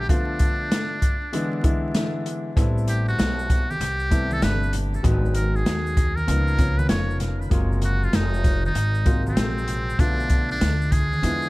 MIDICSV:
0, 0, Header, 1, 5, 480
1, 0, Start_track
1, 0, Tempo, 618557
1, 72, Time_signature, 4, 2, 24, 8
1, 8917, End_track
2, 0, Start_track
2, 0, Title_t, "Muted trumpet"
2, 0, Program_c, 0, 59
2, 74, Note_on_c, 0, 62, 86
2, 1482, Note_off_c, 0, 62, 0
2, 2241, Note_on_c, 0, 67, 67
2, 2383, Note_off_c, 0, 67, 0
2, 2394, Note_on_c, 0, 66, 81
2, 2876, Note_on_c, 0, 67, 88
2, 2888, Note_off_c, 0, 66, 0
2, 3362, Note_on_c, 0, 69, 83
2, 3374, Note_off_c, 0, 67, 0
2, 3439, Note_on_c, 0, 71, 77
2, 3451, Note_off_c, 0, 69, 0
2, 3676, Note_off_c, 0, 71, 0
2, 4151, Note_on_c, 0, 70, 70
2, 4315, Note_on_c, 0, 68, 78
2, 4327, Note_off_c, 0, 70, 0
2, 4780, Note_on_c, 0, 70, 93
2, 4792, Note_off_c, 0, 68, 0
2, 5265, Note_on_c, 0, 71, 84
2, 5276, Note_off_c, 0, 70, 0
2, 5346, Note_off_c, 0, 71, 0
2, 5351, Note_on_c, 0, 73, 80
2, 5574, Note_off_c, 0, 73, 0
2, 6087, Note_on_c, 0, 66, 85
2, 6242, Note_on_c, 0, 65, 83
2, 6254, Note_off_c, 0, 66, 0
2, 6328, Note_on_c, 0, 63, 92
2, 6340, Note_off_c, 0, 65, 0
2, 6717, Note_off_c, 0, 63, 0
2, 6723, Note_on_c, 0, 63, 88
2, 7165, Note_off_c, 0, 63, 0
2, 7208, Note_on_c, 0, 60, 85
2, 7760, Note_on_c, 0, 62, 99
2, 7772, Note_off_c, 0, 60, 0
2, 8153, Note_off_c, 0, 62, 0
2, 8159, Note_on_c, 0, 62, 94
2, 8477, Note_on_c, 0, 68, 96
2, 8489, Note_off_c, 0, 62, 0
2, 8917, Note_off_c, 0, 68, 0
2, 8917, End_track
3, 0, Start_track
3, 0, Title_t, "Grand piano"
3, 0, Program_c, 1, 0
3, 64, Note_on_c, 1, 50, 74
3, 68, Note_on_c, 1, 53, 67
3, 72, Note_on_c, 1, 57, 69
3, 74, Note_on_c, 1, 59, 67
3, 77, Note_on_c, 1, 65, 80
3, 882, Note_off_c, 1, 50, 0
3, 884, Note_off_c, 1, 53, 0
3, 886, Note_off_c, 1, 57, 0
3, 887, Note_off_c, 1, 59, 0
3, 889, Note_off_c, 1, 65, 0
3, 1026, Note_on_c, 1, 50, 81
3, 1029, Note_on_c, 1, 52, 80
3, 1033, Note_on_c, 1, 56, 78
3, 1039, Note_on_c, 1, 59, 78
3, 1041, Note_on_c, 1, 64, 92
3, 1240, Note_off_c, 1, 50, 0
3, 1241, Note_off_c, 1, 52, 0
3, 1243, Note_off_c, 1, 56, 0
3, 1246, Note_off_c, 1, 59, 0
3, 1247, Note_off_c, 1, 64, 0
3, 1258, Note_on_c, 1, 50, 87
3, 1262, Note_on_c, 1, 52, 77
3, 1269, Note_on_c, 1, 56, 85
3, 1273, Note_on_c, 1, 59, 78
3, 1276, Note_on_c, 1, 64, 98
3, 1476, Note_off_c, 1, 50, 0
3, 1478, Note_off_c, 1, 52, 0
3, 1481, Note_off_c, 1, 56, 0
3, 1483, Note_off_c, 1, 59, 0
3, 1485, Note_off_c, 1, 64, 0
3, 1506, Note_on_c, 1, 50, 79
3, 1509, Note_on_c, 1, 52, 68
3, 1515, Note_on_c, 1, 56, 61
3, 1516, Note_on_c, 1, 59, 61
3, 1521, Note_on_c, 1, 64, 84
3, 1931, Note_off_c, 1, 50, 0
3, 1932, Note_off_c, 1, 52, 0
3, 1935, Note_off_c, 1, 56, 0
3, 1936, Note_off_c, 1, 59, 0
3, 1938, Note_off_c, 1, 64, 0
3, 1985, Note_on_c, 1, 60, 78
3, 1988, Note_on_c, 1, 55, 83
3, 1991, Note_on_c, 1, 57, 72
3, 1997, Note_on_c, 1, 59, 83
3, 2001, Note_on_c, 1, 64, 95
3, 2803, Note_off_c, 1, 60, 0
3, 2804, Note_off_c, 1, 55, 0
3, 2806, Note_off_c, 1, 57, 0
3, 2808, Note_off_c, 1, 59, 0
3, 2810, Note_off_c, 1, 64, 0
3, 3183, Note_on_c, 1, 48, 72
3, 3185, Note_on_c, 1, 55, 64
3, 3189, Note_on_c, 1, 57, 67
3, 3194, Note_on_c, 1, 59, 68
3, 3197, Note_on_c, 1, 64, 82
3, 3398, Note_off_c, 1, 48, 0
3, 3399, Note_off_c, 1, 55, 0
3, 3401, Note_off_c, 1, 57, 0
3, 3404, Note_off_c, 1, 59, 0
3, 3405, Note_off_c, 1, 64, 0
3, 3423, Note_on_c, 1, 48, 64
3, 3428, Note_on_c, 1, 55, 58
3, 3431, Note_on_c, 1, 57, 57
3, 3433, Note_on_c, 1, 59, 58
3, 3439, Note_on_c, 1, 62, 70
3, 3849, Note_off_c, 1, 48, 0
3, 3852, Note_off_c, 1, 55, 0
3, 3853, Note_off_c, 1, 57, 0
3, 3854, Note_off_c, 1, 59, 0
3, 3857, Note_off_c, 1, 62, 0
3, 3904, Note_on_c, 1, 51, 92
3, 3906, Note_on_c, 1, 54, 80
3, 3913, Note_on_c, 1, 56, 84
3, 3916, Note_on_c, 1, 59, 76
3, 3920, Note_on_c, 1, 66, 98
3, 4722, Note_off_c, 1, 51, 0
3, 4723, Note_off_c, 1, 54, 0
3, 4726, Note_off_c, 1, 56, 0
3, 4728, Note_off_c, 1, 59, 0
3, 4730, Note_off_c, 1, 66, 0
3, 4863, Note_on_c, 1, 49, 74
3, 4867, Note_on_c, 1, 53, 73
3, 4870, Note_on_c, 1, 58, 68
3, 4874, Note_on_c, 1, 59, 71
3, 4880, Note_on_c, 1, 63, 82
3, 5078, Note_off_c, 1, 49, 0
3, 5080, Note_off_c, 1, 53, 0
3, 5082, Note_off_c, 1, 58, 0
3, 5084, Note_off_c, 1, 59, 0
3, 5087, Note_off_c, 1, 63, 0
3, 5100, Note_on_c, 1, 49, 74
3, 5105, Note_on_c, 1, 53, 70
3, 5110, Note_on_c, 1, 58, 70
3, 5112, Note_on_c, 1, 59, 65
3, 5117, Note_on_c, 1, 61, 76
3, 5317, Note_off_c, 1, 49, 0
3, 5319, Note_off_c, 1, 53, 0
3, 5322, Note_off_c, 1, 58, 0
3, 5323, Note_off_c, 1, 59, 0
3, 5325, Note_off_c, 1, 61, 0
3, 5341, Note_on_c, 1, 49, 67
3, 5344, Note_on_c, 1, 53, 58
3, 5348, Note_on_c, 1, 58, 56
3, 5350, Note_on_c, 1, 59, 59
3, 5356, Note_on_c, 1, 63, 64
3, 5768, Note_off_c, 1, 49, 0
3, 5770, Note_off_c, 1, 53, 0
3, 5772, Note_off_c, 1, 58, 0
3, 5773, Note_off_c, 1, 59, 0
3, 5776, Note_off_c, 1, 63, 0
3, 5818, Note_on_c, 1, 48, 81
3, 5822, Note_on_c, 1, 54, 79
3, 5826, Note_on_c, 1, 56, 81
3, 5829, Note_on_c, 1, 58, 80
3, 5833, Note_on_c, 1, 65, 88
3, 6639, Note_off_c, 1, 48, 0
3, 6641, Note_off_c, 1, 54, 0
3, 6643, Note_off_c, 1, 56, 0
3, 6644, Note_off_c, 1, 58, 0
3, 6647, Note_off_c, 1, 65, 0
3, 7021, Note_on_c, 1, 48, 73
3, 7026, Note_on_c, 1, 54, 70
3, 7030, Note_on_c, 1, 56, 68
3, 7033, Note_on_c, 1, 58, 72
3, 7036, Note_on_c, 1, 65, 84
3, 7237, Note_off_c, 1, 48, 0
3, 7240, Note_off_c, 1, 54, 0
3, 7242, Note_off_c, 1, 56, 0
3, 7243, Note_off_c, 1, 58, 0
3, 7245, Note_off_c, 1, 65, 0
3, 7263, Note_on_c, 1, 48, 64
3, 7269, Note_on_c, 1, 54, 58
3, 7272, Note_on_c, 1, 56, 63
3, 7278, Note_on_c, 1, 58, 61
3, 7281, Note_on_c, 1, 68, 68
3, 7689, Note_off_c, 1, 48, 0
3, 7692, Note_off_c, 1, 54, 0
3, 7694, Note_off_c, 1, 56, 0
3, 7697, Note_off_c, 1, 58, 0
3, 7698, Note_off_c, 1, 68, 0
3, 7750, Note_on_c, 1, 50, 75
3, 7755, Note_on_c, 1, 53, 66
3, 7758, Note_on_c, 1, 57, 67
3, 7763, Note_on_c, 1, 59, 67
3, 7765, Note_on_c, 1, 65, 84
3, 8565, Note_off_c, 1, 50, 0
3, 8567, Note_off_c, 1, 53, 0
3, 8569, Note_off_c, 1, 57, 0
3, 8571, Note_off_c, 1, 59, 0
3, 8572, Note_off_c, 1, 65, 0
3, 8707, Note_on_c, 1, 50, 72
3, 8711, Note_on_c, 1, 53, 65
3, 8716, Note_on_c, 1, 56, 65
3, 8721, Note_on_c, 1, 59, 70
3, 8723, Note_on_c, 1, 64, 81
3, 8917, Note_off_c, 1, 50, 0
3, 8917, Note_off_c, 1, 53, 0
3, 8917, Note_off_c, 1, 56, 0
3, 8917, Note_off_c, 1, 59, 0
3, 8917, Note_off_c, 1, 64, 0
3, 8917, End_track
4, 0, Start_track
4, 0, Title_t, "Upright bass"
4, 0, Program_c, 2, 32
4, 1993, Note_on_c, 2, 33, 106
4, 2448, Note_off_c, 2, 33, 0
4, 2470, Note_on_c, 2, 35, 97
4, 2927, Note_off_c, 2, 35, 0
4, 2953, Note_on_c, 2, 36, 93
4, 3409, Note_off_c, 2, 36, 0
4, 3430, Note_on_c, 2, 31, 82
4, 3887, Note_off_c, 2, 31, 0
4, 3910, Note_on_c, 2, 32, 105
4, 4367, Note_off_c, 2, 32, 0
4, 4394, Note_on_c, 2, 39, 98
4, 4849, Note_off_c, 2, 39, 0
4, 4873, Note_on_c, 2, 37, 109
4, 5328, Note_off_c, 2, 37, 0
4, 5353, Note_on_c, 2, 29, 90
4, 5809, Note_off_c, 2, 29, 0
4, 5830, Note_on_c, 2, 30, 91
4, 6287, Note_off_c, 2, 30, 0
4, 6310, Note_on_c, 2, 29, 91
4, 6767, Note_off_c, 2, 29, 0
4, 6792, Note_on_c, 2, 32, 92
4, 7248, Note_off_c, 2, 32, 0
4, 7272, Note_on_c, 2, 34, 93
4, 7728, Note_off_c, 2, 34, 0
4, 7752, Note_on_c, 2, 35, 99
4, 8208, Note_off_c, 2, 35, 0
4, 8233, Note_on_c, 2, 38, 94
4, 8688, Note_off_c, 2, 38, 0
4, 8714, Note_on_c, 2, 40, 103
4, 8917, Note_off_c, 2, 40, 0
4, 8917, End_track
5, 0, Start_track
5, 0, Title_t, "Drums"
5, 72, Note_on_c, 9, 36, 100
5, 74, Note_on_c, 9, 42, 75
5, 149, Note_off_c, 9, 36, 0
5, 152, Note_off_c, 9, 42, 0
5, 305, Note_on_c, 9, 42, 67
5, 311, Note_on_c, 9, 36, 85
5, 383, Note_off_c, 9, 42, 0
5, 389, Note_off_c, 9, 36, 0
5, 555, Note_on_c, 9, 42, 89
5, 557, Note_on_c, 9, 38, 117
5, 633, Note_off_c, 9, 42, 0
5, 635, Note_off_c, 9, 38, 0
5, 793, Note_on_c, 9, 36, 81
5, 793, Note_on_c, 9, 42, 66
5, 871, Note_off_c, 9, 36, 0
5, 871, Note_off_c, 9, 42, 0
5, 1034, Note_on_c, 9, 42, 73
5, 1112, Note_off_c, 9, 42, 0
5, 1272, Note_on_c, 9, 42, 69
5, 1273, Note_on_c, 9, 36, 96
5, 1350, Note_off_c, 9, 42, 0
5, 1351, Note_off_c, 9, 36, 0
5, 1510, Note_on_c, 9, 42, 92
5, 1511, Note_on_c, 9, 38, 98
5, 1587, Note_off_c, 9, 42, 0
5, 1588, Note_off_c, 9, 38, 0
5, 1753, Note_on_c, 9, 42, 74
5, 1831, Note_off_c, 9, 42, 0
5, 1993, Note_on_c, 9, 36, 105
5, 1995, Note_on_c, 9, 42, 72
5, 2000, Note_on_c, 9, 82, 61
5, 2070, Note_off_c, 9, 36, 0
5, 2073, Note_off_c, 9, 42, 0
5, 2077, Note_off_c, 9, 82, 0
5, 2157, Note_on_c, 9, 82, 42
5, 2232, Note_on_c, 9, 42, 64
5, 2234, Note_off_c, 9, 82, 0
5, 2239, Note_on_c, 9, 82, 43
5, 2310, Note_off_c, 9, 42, 0
5, 2317, Note_off_c, 9, 82, 0
5, 2393, Note_on_c, 9, 82, 40
5, 2470, Note_off_c, 9, 82, 0
5, 2473, Note_on_c, 9, 82, 59
5, 2479, Note_on_c, 9, 42, 84
5, 2480, Note_on_c, 9, 38, 114
5, 2551, Note_off_c, 9, 82, 0
5, 2556, Note_off_c, 9, 42, 0
5, 2558, Note_off_c, 9, 38, 0
5, 2630, Note_on_c, 9, 82, 48
5, 2708, Note_off_c, 9, 82, 0
5, 2714, Note_on_c, 9, 36, 79
5, 2715, Note_on_c, 9, 64, 62
5, 2715, Note_on_c, 9, 82, 48
5, 2716, Note_on_c, 9, 42, 73
5, 2792, Note_off_c, 9, 36, 0
5, 2792, Note_off_c, 9, 64, 0
5, 2792, Note_off_c, 9, 82, 0
5, 2794, Note_off_c, 9, 42, 0
5, 2876, Note_on_c, 9, 63, 60
5, 2876, Note_on_c, 9, 82, 45
5, 2954, Note_off_c, 9, 63, 0
5, 2954, Note_off_c, 9, 82, 0
5, 2954, Note_on_c, 9, 82, 62
5, 2955, Note_on_c, 9, 42, 70
5, 3032, Note_off_c, 9, 42, 0
5, 3032, Note_off_c, 9, 82, 0
5, 3099, Note_on_c, 9, 82, 42
5, 3177, Note_off_c, 9, 82, 0
5, 3194, Note_on_c, 9, 42, 65
5, 3195, Note_on_c, 9, 36, 89
5, 3195, Note_on_c, 9, 82, 50
5, 3271, Note_off_c, 9, 42, 0
5, 3272, Note_off_c, 9, 36, 0
5, 3272, Note_off_c, 9, 82, 0
5, 3344, Note_on_c, 9, 63, 71
5, 3344, Note_on_c, 9, 82, 52
5, 3421, Note_off_c, 9, 63, 0
5, 3421, Note_off_c, 9, 82, 0
5, 3429, Note_on_c, 9, 82, 67
5, 3433, Note_on_c, 9, 42, 91
5, 3434, Note_on_c, 9, 38, 106
5, 3507, Note_off_c, 9, 82, 0
5, 3510, Note_off_c, 9, 42, 0
5, 3511, Note_off_c, 9, 38, 0
5, 3594, Note_on_c, 9, 82, 44
5, 3670, Note_on_c, 9, 42, 77
5, 3671, Note_off_c, 9, 82, 0
5, 3678, Note_on_c, 9, 64, 59
5, 3678, Note_on_c, 9, 82, 44
5, 3748, Note_off_c, 9, 42, 0
5, 3756, Note_off_c, 9, 64, 0
5, 3756, Note_off_c, 9, 82, 0
5, 3833, Note_on_c, 9, 82, 50
5, 3911, Note_off_c, 9, 82, 0
5, 3912, Note_on_c, 9, 36, 105
5, 3914, Note_on_c, 9, 42, 76
5, 3917, Note_on_c, 9, 82, 55
5, 3989, Note_off_c, 9, 36, 0
5, 3992, Note_off_c, 9, 42, 0
5, 3995, Note_off_c, 9, 82, 0
5, 4077, Note_on_c, 9, 82, 41
5, 4148, Note_on_c, 9, 42, 63
5, 4155, Note_off_c, 9, 82, 0
5, 4160, Note_on_c, 9, 82, 42
5, 4225, Note_off_c, 9, 42, 0
5, 4238, Note_off_c, 9, 82, 0
5, 4313, Note_on_c, 9, 82, 37
5, 4391, Note_off_c, 9, 82, 0
5, 4394, Note_on_c, 9, 42, 83
5, 4394, Note_on_c, 9, 82, 60
5, 4395, Note_on_c, 9, 38, 114
5, 4471, Note_off_c, 9, 42, 0
5, 4471, Note_off_c, 9, 82, 0
5, 4473, Note_off_c, 9, 38, 0
5, 4551, Note_on_c, 9, 82, 53
5, 4629, Note_off_c, 9, 82, 0
5, 4632, Note_on_c, 9, 36, 84
5, 4633, Note_on_c, 9, 42, 66
5, 4635, Note_on_c, 9, 64, 68
5, 4635, Note_on_c, 9, 82, 52
5, 4710, Note_off_c, 9, 36, 0
5, 4711, Note_off_c, 9, 42, 0
5, 4712, Note_off_c, 9, 64, 0
5, 4712, Note_off_c, 9, 82, 0
5, 4792, Note_on_c, 9, 63, 58
5, 4792, Note_on_c, 9, 82, 41
5, 4870, Note_off_c, 9, 63, 0
5, 4870, Note_off_c, 9, 82, 0
5, 4874, Note_on_c, 9, 42, 74
5, 4878, Note_on_c, 9, 82, 62
5, 4951, Note_off_c, 9, 42, 0
5, 4955, Note_off_c, 9, 82, 0
5, 5025, Note_on_c, 9, 82, 41
5, 5102, Note_off_c, 9, 82, 0
5, 5110, Note_on_c, 9, 42, 74
5, 5113, Note_on_c, 9, 36, 93
5, 5119, Note_on_c, 9, 82, 49
5, 5188, Note_off_c, 9, 42, 0
5, 5190, Note_off_c, 9, 36, 0
5, 5196, Note_off_c, 9, 82, 0
5, 5269, Note_on_c, 9, 63, 73
5, 5269, Note_on_c, 9, 82, 49
5, 5347, Note_off_c, 9, 63, 0
5, 5347, Note_off_c, 9, 82, 0
5, 5347, Note_on_c, 9, 42, 93
5, 5348, Note_on_c, 9, 38, 116
5, 5351, Note_on_c, 9, 82, 68
5, 5424, Note_off_c, 9, 42, 0
5, 5426, Note_off_c, 9, 38, 0
5, 5428, Note_off_c, 9, 82, 0
5, 5512, Note_on_c, 9, 82, 40
5, 5587, Note_on_c, 9, 42, 75
5, 5589, Note_off_c, 9, 82, 0
5, 5596, Note_on_c, 9, 38, 35
5, 5597, Note_on_c, 9, 64, 65
5, 5597, Note_on_c, 9, 82, 43
5, 5665, Note_off_c, 9, 42, 0
5, 5673, Note_off_c, 9, 38, 0
5, 5675, Note_off_c, 9, 64, 0
5, 5675, Note_off_c, 9, 82, 0
5, 5758, Note_on_c, 9, 82, 49
5, 5829, Note_on_c, 9, 42, 73
5, 5830, Note_on_c, 9, 36, 109
5, 5835, Note_off_c, 9, 82, 0
5, 5838, Note_on_c, 9, 82, 58
5, 5907, Note_off_c, 9, 36, 0
5, 5907, Note_off_c, 9, 42, 0
5, 5915, Note_off_c, 9, 82, 0
5, 5993, Note_on_c, 9, 82, 42
5, 6065, Note_on_c, 9, 42, 73
5, 6071, Note_off_c, 9, 82, 0
5, 6075, Note_on_c, 9, 82, 41
5, 6143, Note_off_c, 9, 42, 0
5, 6153, Note_off_c, 9, 82, 0
5, 6232, Note_on_c, 9, 82, 40
5, 6310, Note_off_c, 9, 82, 0
5, 6310, Note_on_c, 9, 42, 92
5, 6310, Note_on_c, 9, 82, 67
5, 6312, Note_on_c, 9, 38, 119
5, 6388, Note_off_c, 9, 42, 0
5, 6388, Note_off_c, 9, 82, 0
5, 6389, Note_off_c, 9, 38, 0
5, 6471, Note_on_c, 9, 82, 53
5, 6549, Note_off_c, 9, 82, 0
5, 6552, Note_on_c, 9, 36, 94
5, 6552, Note_on_c, 9, 42, 67
5, 6555, Note_on_c, 9, 64, 68
5, 6555, Note_on_c, 9, 82, 49
5, 6629, Note_off_c, 9, 36, 0
5, 6630, Note_off_c, 9, 42, 0
5, 6632, Note_off_c, 9, 64, 0
5, 6632, Note_off_c, 9, 82, 0
5, 6716, Note_on_c, 9, 63, 55
5, 6716, Note_on_c, 9, 82, 40
5, 6791, Note_on_c, 9, 42, 78
5, 6794, Note_off_c, 9, 63, 0
5, 6794, Note_off_c, 9, 82, 0
5, 6794, Note_on_c, 9, 82, 66
5, 6869, Note_off_c, 9, 42, 0
5, 6872, Note_off_c, 9, 82, 0
5, 6941, Note_on_c, 9, 82, 43
5, 7019, Note_off_c, 9, 82, 0
5, 7029, Note_on_c, 9, 42, 76
5, 7033, Note_on_c, 9, 36, 88
5, 7039, Note_on_c, 9, 82, 47
5, 7106, Note_off_c, 9, 42, 0
5, 7111, Note_off_c, 9, 36, 0
5, 7116, Note_off_c, 9, 82, 0
5, 7191, Note_on_c, 9, 63, 65
5, 7191, Note_on_c, 9, 82, 49
5, 7268, Note_off_c, 9, 63, 0
5, 7268, Note_off_c, 9, 82, 0
5, 7269, Note_on_c, 9, 42, 92
5, 7271, Note_on_c, 9, 38, 113
5, 7273, Note_on_c, 9, 82, 66
5, 7347, Note_off_c, 9, 42, 0
5, 7348, Note_off_c, 9, 38, 0
5, 7350, Note_off_c, 9, 82, 0
5, 7436, Note_on_c, 9, 82, 44
5, 7509, Note_on_c, 9, 42, 71
5, 7514, Note_off_c, 9, 82, 0
5, 7520, Note_on_c, 9, 64, 61
5, 7520, Note_on_c, 9, 82, 40
5, 7587, Note_off_c, 9, 42, 0
5, 7597, Note_off_c, 9, 64, 0
5, 7597, Note_off_c, 9, 82, 0
5, 7680, Note_on_c, 9, 82, 48
5, 7752, Note_on_c, 9, 36, 118
5, 7754, Note_on_c, 9, 42, 71
5, 7758, Note_off_c, 9, 82, 0
5, 7758, Note_on_c, 9, 82, 57
5, 7830, Note_off_c, 9, 36, 0
5, 7832, Note_off_c, 9, 42, 0
5, 7836, Note_off_c, 9, 82, 0
5, 7915, Note_on_c, 9, 82, 43
5, 7990, Note_on_c, 9, 42, 67
5, 7993, Note_off_c, 9, 82, 0
5, 7993, Note_on_c, 9, 82, 41
5, 7994, Note_on_c, 9, 36, 85
5, 8068, Note_off_c, 9, 42, 0
5, 8071, Note_off_c, 9, 36, 0
5, 8071, Note_off_c, 9, 82, 0
5, 8154, Note_on_c, 9, 82, 42
5, 8231, Note_off_c, 9, 82, 0
5, 8235, Note_on_c, 9, 42, 89
5, 8236, Note_on_c, 9, 82, 60
5, 8237, Note_on_c, 9, 38, 104
5, 8313, Note_off_c, 9, 42, 0
5, 8313, Note_off_c, 9, 82, 0
5, 8314, Note_off_c, 9, 38, 0
5, 8392, Note_on_c, 9, 82, 54
5, 8470, Note_off_c, 9, 82, 0
5, 8474, Note_on_c, 9, 36, 91
5, 8474, Note_on_c, 9, 42, 67
5, 8474, Note_on_c, 9, 64, 65
5, 8474, Note_on_c, 9, 82, 47
5, 8551, Note_off_c, 9, 36, 0
5, 8551, Note_off_c, 9, 42, 0
5, 8552, Note_off_c, 9, 64, 0
5, 8552, Note_off_c, 9, 82, 0
5, 8637, Note_on_c, 9, 63, 58
5, 8637, Note_on_c, 9, 82, 42
5, 8714, Note_off_c, 9, 63, 0
5, 8714, Note_off_c, 9, 82, 0
5, 8717, Note_on_c, 9, 42, 72
5, 8717, Note_on_c, 9, 82, 67
5, 8794, Note_off_c, 9, 42, 0
5, 8795, Note_off_c, 9, 82, 0
5, 8864, Note_on_c, 9, 82, 42
5, 8917, Note_off_c, 9, 82, 0
5, 8917, End_track
0, 0, End_of_file